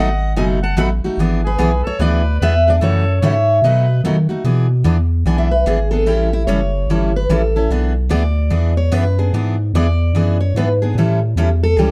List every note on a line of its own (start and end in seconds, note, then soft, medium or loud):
0.00 0.34 G#1 loud
0.00 0.33 D#5 medium
0.00 0.37 F#5 medium
0.35 0.75 F#1 medium
0.35 0.58 B2 medium
0.35 0.58 F#3 medium
0.35 0.58 A3 medium
0.35 0.59 D#4 medium
0.35 0.59 F#4 medium
0.35 0.48 D#5 medium
0.35 0.44 G#5 medium
0.62 0.75 F#5 medium
0.62 0.78 A5 medium
0.76 1.01 A1 loud
0.76 0.88 B2 medium
0.76 0.89 F#3 medium
0.76 0.89 A3 medium
0.76 0.89 D#4 loud
0.76 0.89 F#4 medium
0.76 0.89 F#5 medium
0.76 0.86 B5 medium
1.03 1.10 A1 soft
1.03 1.19 A3 soft
1.03 1.18 D#4 soft
1.03 1.18 F#4 medium
1.17 1.57 G#1 medium
1.17 1.40 E3 medium
1.17 1.41 B3 medium
1.17 1.41 D4 medium
1.17 1.41 G#4 medium
1.44 1.82 G#4 medium
1.44 1.83 B4 medium
1.58 1.83 B1 medium
1.58 1.70 E3 medium
1.58 1.70 B3 medium
1.58 1.71 D4 medium
1.58 1.71 G#4 loud
1.83 1.92 B1 soft
1.83 1.97 A4 medium
1.87 2.01 C#5 medium
1.99 2.39 D2 medium
1.99 2.21 E3 medium
1.99 2.21 B3 medium
1.99 2.22 D4 medium
1.99 2.21 G#4 medium
1.99 2.37 B4 medium
1.99 2.42 D5 medium
2.40 2.80 E2 loud
2.40 2.53 E3 medium
2.40 2.53 B3 medium
2.40 2.53 D4 medium
2.40 2.53 G#4 loud
2.40 2.64 B4 medium
2.40 2.68 E5 loud
2.65 2.82 B3 soft
2.65 2.81 D4 medium
2.65 2.81 G#4 medium
2.65 2.72 B4 medium
2.70 2.75 D5 medium
2.80 3.21 F#2 medium
2.80 3.03 C#3 medium
2.80 3.03 E3 medium
2.80 3.03 A3 medium
2.80 3.03 C#4 medium
2.80 3.03 F#4 medium
2.80 3.19 A4 medium
2.80 3.24 C#5 medium
3.21 3.61 G#2 medium
3.21 3.33 C#3 medium
3.21 3.34 E3 medium
3.21 3.34 A3 medium
3.21 3.34 C#4 medium
3.21 3.34 F#4 medium
3.21 3.59 C#5 medium
3.21 3.64 E5 loud
3.62 4.02 B2 medium
3.62 3.85 B2 medium
3.62 3.85 F#3 medium
3.62 3.85 A3 medium
3.62 3.85 D#4 medium
3.62 3.85 F#4 medium
3.62 4.01 B4 medium
3.62 4.01 D#5 medium
4.04 4.15 B2 medium
4.04 4.28 D#3 loud
4.04 4.15 F#3 medium
4.04 4.15 A3 medium
4.04 4.16 D#4 medium
4.04 4.16 F#4 medium
4.29 4.37 D#3 soft
4.29 4.44 A3 soft
4.29 4.44 D#4 soft
4.29 4.43 F#4 soft
4.44 4.84 B2 medium
4.44 4.66 E3 medium
4.44 4.66 B3 medium
4.44 4.66 D4 medium
4.44 4.66 G#4 medium
4.84 5.24 E2 medium
4.84 4.96 E3 medium
4.84 4.96 B3 medium
4.84 4.96 D4 medium
4.84 4.96 G#4 medium
5.25 5.65 B1 medium
5.25 5.47 E3 medium
5.25 5.48 B3 medium
5.25 5.47 D4 medium
5.25 5.48 G#4 medium
5.25 5.38 G#5 medium
5.38 5.52 E5 medium
5.51 5.65 B4 medium
5.66 6.06 G#1 medium
5.66 5.77 E3 medium
5.66 5.78 B3 medium
5.66 5.78 D4 medium
5.66 5.90 G#4 medium
5.66 5.78 G#4 medium
5.91 6.06 B3 soft
5.91 6.06 D4 soft
5.91 6.06 G#4 soft
5.91 6.08 A4 medium
6.06 6.46 A1 medium
6.06 6.28 E3 medium
6.06 6.28 G3 medium
6.06 6.28 C#4 medium
6.06 6.29 E4 medium
6.06 6.33 G4 medium
6.06 6.28 A4 medium
6.33 6.42 E4 medium
6.47 6.87 F#1 medium
6.47 6.59 E3 medium
6.47 6.59 G3 medium
6.47 6.59 C#4 medium
6.47 6.59 E4 medium
6.47 6.60 A4 loud
6.47 7.10 C#5 medium
6.87 7.27 G1 medium
6.87 7.11 E3 medium
6.87 7.11 G3 medium
6.87 7.11 C#4 medium
6.87 7.11 E4 medium
6.87 7.11 A4 medium
7.16 7.30 B4 medium
7.29 7.68 A1 medium
7.29 7.41 E3 medium
7.29 7.41 G3 medium
7.29 7.41 C#4 medium
7.29 7.41 E4 medium
7.29 7.41 A4 medium
7.29 7.56 A4 medium
7.56 7.70 C#4 soft
7.56 7.70 E4 medium
7.56 7.70 A4 medium
7.70 8.09 B1 medium
7.70 7.92 E3 medium
7.70 7.92 B3 medium
7.70 7.92 D4 medium
7.70 7.92 G#4 medium
8.09 8.50 D2 medium
8.09 8.21 E3 medium
8.09 8.22 B3 medium
8.09 8.22 D4 medium
8.09 8.22 G#4 medium
8.09 8.73 D5 medium
8.50 8.91 E2 medium
8.50 8.73 E3 medium
8.50 8.72 B3 medium
8.50 8.72 D4 medium
8.50 8.73 G#4 medium
8.77 8.93 C#5 medium
8.92 9.32 F#2 medium
8.92 9.03 E3 medium
8.92 9.03 B3 medium
8.92 9.04 D4 medium
8.92 9.04 G#4 medium
8.92 9.18 B4 medium
9.19 9.33 B3 soft
9.19 9.33 D4 soft
9.19 9.32 G#4 medium
9.33 9.72 G#2 medium
9.33 9.55 E3 medium
9.33 9.55 B3 medium
9.33 9.55 D4 medium
9.33 9.55 G#4 medium
9.73 10.12 E2 loud
9.73 9.86 E3 medium
9.73 9.86 B3 medium
9.73 9.86 D4 medium
9.73 9.86 G#4 medium
9.73 10.37 D5 medium
10.13 10.53 F#2 medium
10.13 10.36 E3 medium
10.13 10.37 B3 medium
10.13 10.37 D4 medium
10.13 10.37 G#4 medium
10.41 10.55 C#5 medium
10.55 10.94 G#2 medium
10.55 10.67 E3 medium
10.55 10.68 B3 medium
10.55 10.68 D4 medium
10.55 10.68 G#4 medium
10.55 10.72 B4 medium
10.82 10.96 B3 soft
10.82 10.96 D4 soft
10.82 10.96 G#4 medium
10.95 11.35 A2 medium
10.95 11.18 E3 medium
10.95 11.18 G3 medium
10.95 11.19 C#4 medium
10.95 11.19 E4 medium
10.95 11.19 A4 medium
11.36 11.76 E2 medium
11.36 11.48 E3 medium
11.36 11.49 G3 medium
11.36 11.49 C#4 medium
11.36 11.49 E4 medium
11.36 11.49 A4 medium
11.63 11.79 A4 medium
11.76 11.91 C#2 medium
11.76 11.91 E3 medium
11.76 11.91 G3 medium
11.76 11.91 C#4 medium
11.76 11.91 E4 medium
11.76 11.91 G4 medium
11.76 11.91 A4 medium